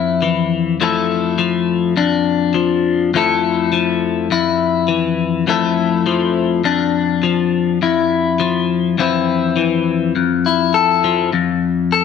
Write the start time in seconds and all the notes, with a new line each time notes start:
Already playing: F2 E4
0.22 E3
0.81 F2 F3 A3 E4 A4
1.38 F3
1.96 F2 D4
2.54 F3
3.14 F2 F3 A3 E4 A4
3.73 F3
4.31 F2 E4
4.88 E3
5.47 F2 F3 A3 E4 A4
6.06 F3
6.64 F2 D4
7.23 F3
7.82 F2 E4
8.40 F3
8.98 F2 E3 C4 E4, muted clean electric guitar stroke
9.56 E3
10.16 F2
10.46 E4
10.74 A4
11.04 F3
11.33 F2
11.92 A4